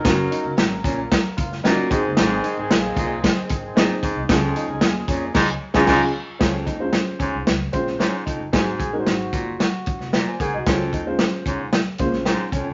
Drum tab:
CC |----------------|----------------|--------x---x---|----------------|
HH |x-x-x-x-x-x-x-x-|x-x-x-x-x-x-x-x-|x-x-x-x---------|x-x-x-x-x-x-x-x-|
SD |o---o---o--oo---|o---o---o---o---|o---o---o--oo---|o---o---o--oo---|
BD |o-----o-o-o---o-|------o-o-o---o-|o-----o-o--oo---|o-o---o---o---o-|

CC |----------------|----------------|
HH |x-x-x-x-x-x-x-x-|x-x-x-x-x-x-x-x-|
SD |o---o---o--oo---|o---o---o--oo---|
BD |o-o---o---o---o-|o-o---o---o---o-|